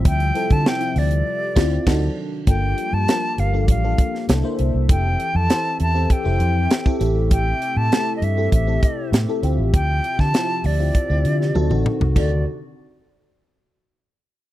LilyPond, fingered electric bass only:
\new Staff \with { instrumentName = "Fingered electric bass" } { \clef bass \time 4/4 \key d \minor \tempo 4 = 99 d,8 r16 d16 r8 d,8 r8 d,8 d,8 r8 | g,,8 r16 g,16 r8 g,,8 a,,8 r8 c,16 r16 c,16 c,16 | f,,8 r16 f,16 r8 e,8 r16 f,,16 f,8 r8 a,,8~ | a,,8 r16 a,16 r8 g,8 a,,8 r8 a,16 r16 d,16 a,,16 |
d,8 r16 d16 r8 d,8 r16 d,16 d8 d,16 a,,16 r16 c,16 | d,8 r2. r8 | }